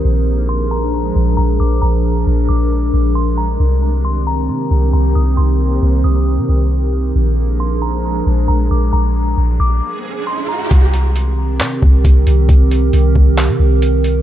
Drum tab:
HH |--------|--------|--------|--------|
CP |--------|--------|--------|--------|
BD |--------|--------|--------|--------|

HH |--------|--------|xxx-x-xx|xxx-x-xx|
CP |--------|--------|----x---|----x---|
BD |--------|--------|o----oo-|o--o----|